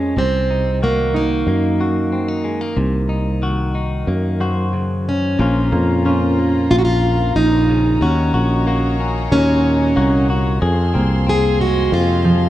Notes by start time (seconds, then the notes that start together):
Already playing: F2 F3 G#3 C#4 F4 G#4 A#4
0.17 C2 C3 C4
0.50 D#4
0.82 D#3 A#3 F#4
1.14 A#3 D#4
1.47 F#2 A#3
1.80 F#2 F#4
2.12 C4
2.28 D#4
2.44 G#3
2.61 A#3
2.77 C2 C3
3.09 D#4
3.42 D#3 F#4
3.75 D#4
4.07 F#2 A#3
4.40 F#2 F#4 C5
4.73 C#3
5.09 C#4
5.39 A#1 A#2 F3 A#3 C#4 F4 A#4 A#5
5.72 F2 A#3
6.05 F3 C#4 F4
6.39 A#3
6.71 A#1 F2 F4
6.78 F#4
6.85 F4
7.36 A#1 D#4
7.70 C#3
8.01 D#2 D#3 C#4 F#4 C#5 D#5
8.34 A#1 F#4
8.67 A#3 F#4
9.00 C#4
9.31 D#2 A#2 C#4
9.96 C2 A#3 F#4
10.30 F#4
10.61 F2 G#4 C5 F5 C6
10.94 C2 A#3 C4
11.27 C4 G#4
11.60 G#3 F#4
11.92 F2 C3 F4
12.25 F3